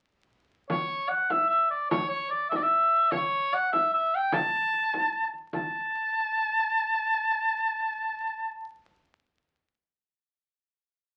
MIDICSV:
0, 0, Header, 1, 3, 480
1, 0, Start_track
1, 0, Tempo, 402145
1, 826, Time_signature, 6, 3, 24, 8
1, 13325, End_track
2, 0, Start_track
2, 0, Title_t, "Shawm"
2, 0, Program_c, 0, 111
2, 838, Note_on_c, 0, 73, 79
2, 1299, Note_on_c, 0, 78, 68
2, 1316, Note_off_c, 0, 73, 0
2, 1558, Note_on_c, 0, 76, 78
2, 1576, Note_off_c, 0, 78, 0
2, 1777, Note_off_c, 0, 76, 0
2, 1784, Note_on_c, 0, 76, 79
2, 2011, Note_off_c, 0, 76, 0
2, 2036, Note_on_c, 0, 74, 68
2, 2258, Note_off_c, 0, 74, 0
2, 2270, Note_on_c, 0, 73, 81
2, 2488, Note_off_c, 0, 73, 0
2, 2495, Note_on_c, 0, 73, 72
2, 2728, Note_off_c, 0, 73, 0
2, 2749, Note_on_c, 0, 74, 71
2, 2976, Note_off_c, 0, 74, 0
2, 2981, Note_on_c, 0, 76, 78
2, 3063, Note_on_c, 0, 74, 72
2, 3081, Note_off_c, 0, 76, 0
2, 3141, Note_on_c, 0, 76, 81
2, 3159, Note_off_c, 0, 74, 0
2, 3717, Note_on_c, 0, 73, 86
2, 3735, Note_off_c, 0, 76, 0
2, 4222, Note_on_c, 0, 78, 83
2, 4240, Note_off_c, 0, 73, 0
2, 4441, Note_off_c, 0, 78, 0
2, 4448, Note_on_c, 0, 76, 86
2, 4668, Note_off_c, 0, 76, 0
2, 4695, Note_on_c, 0, 76, 79
2, 4955, Note_on_c, 0, 79, 80
2, 4973, Note_off_c, 0, 76, 0
2, 5175, Note_on_c, 0, 81, 94
2, 5193, Note_off_c, 0, 79, 0
2, 6370, Note_off_c, 0, 81, 0
2, 6613, Note_on_c, 0, 81, 86
2, 10390, Note_off_c, 0, 81, 0
2, 13325, End_track
3, 0, Start_track
3, 0, Title_t, "Frame drum"
3, 832, Note_on_c, 9, 64, 76
3, 951, Note_off_c, 9, 64, 0
3, 1085, Note_on_c, 9, 64, 25
3, 1204, Note_off_c, 9, 64, 0
3, 1318, Note_on_c, 9, 64, 28
3, 1437, Note_off_c, 9, 64, 0
3, 1553, Note_on_c, 9, 64, 60
3, 1673, Note_off_c, 9, 64, 0
3, 2282, Note_on_c, 9, 64, 84
3, 2402, Note_off_c, 9, 64, 0
3, 2524, Note_on_c, 9, 64, 25
3, 2643, Note_off_c, 9, 64, 0
3, 2771, Note_on_c, 9, 64, 26
3, 2891, Note_off_c, 9, 64, 0
3, 3008, Note_on_c, 9, 64, 63
3, 3127, Note_off_c, 9, 64, 0
3, 3722, Note_on_c, 9, 64, 71
3, 3842, Note_off_c, 9, 64, 0
3, 3963, Note_on_c, 9, 64, 26
3, 4083, Note_off_c, 9, 64, 0
3, 4205, Note_on_c, 9, 64, 26
3, 4325, Note_off_c, 9, 64, 0
3, 4451, Note_on_c, 9, 64, 60
3, 4571, Note_off_c, 9, 64, 0
3, 5160, Note_on_c, 9, 64, 84
3, 5279, Note_off_c, 9, 64, 0
3, 5653, Note_on_c, 9, 64, 27
3, 5772, Note_off_c, 9, 64, 0
3, 5893, Note_on_c, 9, 64, 58
3, 6012, Note_off_c, 9, 64, 0
3, 6366, Note_on_c, 9, 64, 22
3, 6485, Note_off_c, 9, 64, 0
3, 6603, Note_on_c, 9, 64, 70
3, 6722, Note_off_c, 9, 64, 0
3, 13325, End_track
0, 0, End_of_file